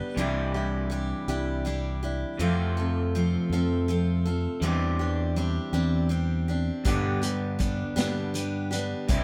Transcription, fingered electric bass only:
0.17 C2
1.28 C2
2.39 F2
3.50 F2
4.61 E2
5.72 E2
6.85 G2
7.96 G2
9.09 C2

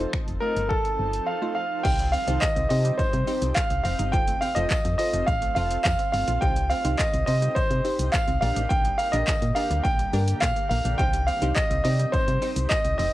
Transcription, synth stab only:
0.00 A3 D#4 F4 C5
0.42 A3 D#4 F4 D#5
1.42 A3 D#4 F4 C5
1.84 D#4 G4 C5
2.27 D#4 G4 C5
2.70 D#4 G4 C5
3.27 D#4 G4 C5
4.13 F4 A4 C5
4.56 F4 A4 C5
4.99 F4 A4 C5
5.56 F4 A4 C5
6.42 D#4 G4 C5
6.85 D#4 G4 C5
7.27 D#4 G4 C5
7.85 D#4 G4 C5
8.42 D4 G4 A#4
9.13 D4 G4 A#4
9.56 D4 G4 A#4
10.13 D4 G4 A#4
10.99 D#4 G4 C5
11.42 D#4 G4 C5
11.85 D#4 G4 D5
12.42 D#4 G4 C5

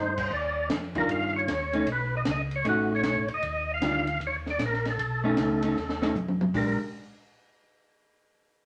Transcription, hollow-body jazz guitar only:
0.95 D#3 G3 D4 F4
1.73 A3 C#4 D#4
2.65 A3 C#4 D#4
3.82 D#3 G3 D4 F4
5.24 A3 C#4 D#4
5.63 A3 C#4 D#4
6.02 A3 C#4 D#4
6.54 G#3 D4 G4

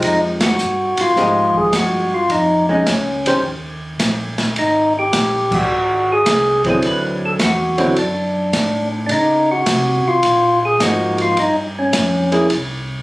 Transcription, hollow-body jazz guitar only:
Already playing: F3 G#3 D#4 G4
1.17 F3 G#3 D#4 G4
2.69 G#3 C#4 D#4
3.26 D#3 C#4 G4 C5
6.65 D3 F#3 C4 E4
7.78 D3 F#3 C4 E4
10.80 F3 A#3 D#4
12.32 A#3 E4 G#4

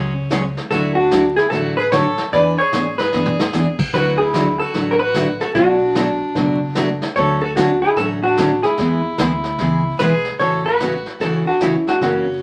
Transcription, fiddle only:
Already playing: C#4
0.70 F#4
0.97 D4
1.37 E4
1.53 F#4
1.78 G#4
1.92 A4
2.32 B4
2.59 G#4
3.00 G#4
3.95 F#4
4.21 E4
4.61 F#4
4.92 F#4
5.01 F#4
5.41 F#4
5.56 D4
7.16 A4
7.43 F#4
7.58 D4
7.84 E4
7.97 F#4
8.23 D4
8.64 E4
9.99 G#4
10.39 A4
10.66 F#4
11.20 F#4
11.46 D4
11.61 C#4
11.87 D4
12.01 C#4

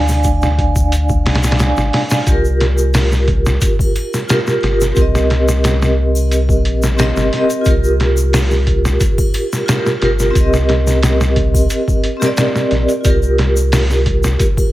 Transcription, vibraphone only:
Already playing: D4 D5 F5 G#5
1.57 D4 D5 F5
1.62 G#5
2.23 F4
2.27 G4
2.32 A#4
4.27 F4 G4
4.32 A#4
4.61 F4 G4
4.65 A#4
4.92 C4 G4
4.99 A#4 D#5
6.97 C4 G4 A#4
7.01 D#5
7.30 C4 G4 A#4
7.35 D#5
7.61 F4
7.66 G4
7.71 A#4
9.66 F4 G4
9.71 A#4
10.00 F4 G4
10.04 A#4
10.31 C4 G4
10.37 A#4 D#5
12.17 C4 G4
12.23 A#4 D5
13.01 F4
13.05 G4
13.10 A#4

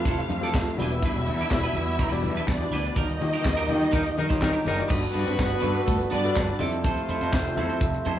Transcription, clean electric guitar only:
0.07 C4 E4 A4 C5
0.20 muted clean electric guitar stroke
0.30 muted clean electric guitar stroke
0.43 C4 E4 A4 D5
0.68 muted clean electric guitar stroke
0.80 G3 D4 E4 B4
0.93 muted clean electric guitar stroke
1.04 G3 D4 E4 B4
1.17 muted clean electric guitar stroke
1.28 muted clean electric guitar stroke
1.41 G3 D4 E4 D5
1.52 muted clean electric guitar stroke
1.64 G3 D4 E4 B4
1.76 muted clean electric guitar stroke
1.89 muted clean electric guitar stroke
1.99 G3 D4 E4 B4
2.12 muted clean electric guitar stroke
2.25 muted clean electric guitar stroke
2.37 G3 D4 E4 B4
2.61 muted clean electric guitar stroke
2.72 G3 D4 E4 B4
2.84 muted clean electric guitar stroke
2.96 A#3 D4 G4 A#4
3.09 muted clean electric guitar stroke
3.21 muted clean electric guitar stroke
3.33 A#3 D4 G4 A#4
3.45 muted clean electric guitar stroke
3.57 A#3 D4 G4 A#4
3.69 muted clean electric guitar stroke
3.81 muted clean electric guitar stroke
3.92 A#3 D4 G4 A#4
4.06 muted clean electric guitar stroke
4.17 muted clean electric guitar stroke
4.29 A#3 D4 G4 C5
4.41 muted clean electric guitar stroke
4.53 A#3 D4 G4 A#4
4.64 A#3 D4 G4 A#4
4.77 muted clean electric guitar stroke
4.88 B3 D4 F#4 B4
5.12 B3 D4 F#4 B4
5.25 B3 D4 F#4 B4
5.36 muted clean electric guitar stroke
5.50 muted clean electric guitar stroke
5.61 B3 D4 F#4 B4
5.73 B3 D4 F#4 B4
5.98 muted clean electric guitar stroke
6.10 B3 D4 F#4 B4
6.24 muted clean electric guitar stroke
6.48 muted clean electric guitar stroke
6.59 C4 E4 A4 D5
6.73 muted clean electric guitar stroke
6.84 C4 E4 A4 C5
7.09 C4 E4 A4 C5
7.21 C4 E4 A4 C5
7.33 muted clean electric guitar stroke
7.46 muted clean electric guitar stroke
7.58 C4 E4 A4 C5
7.70 C4 E4 A4 C5
7.95 muted clean electric guitar stroke
8.05 C4 E4 A4 C5

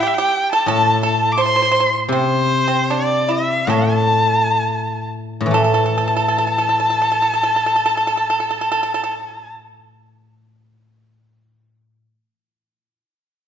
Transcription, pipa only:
0.03 G4
0.18 G4
0.53 A4
0.68 A4
1.03 A4
1.38 C5
1.46 C5
1.56 C5
1.62 C5
1.72 C5
1.80 C5
2.12 C4
2.68 C4
2.90 D4
3.29 E4
3.70 A4
5.54 A4
5.64 A4
5.74 A4
5.86 A4
5.98 A4
6.08 A4
6.16 A4
6.28 A4
6.38 A4
6.47 A4
6.58 A4
6.69 A4
6.80 A4
6.90 A4
7.02 A4
7.12 A4
7.22 A4
7.34 A4
7.43 A4
7.56 A4
7.66 A4
7.76 A4
7.86 A4
7.97 A4
8.07 A4
8.17 A4
8.30 A4
8.40 A4
8.51 A4
8.61 A4
8.72 A4
8.83 A4
8.94 A4
9.04 A4

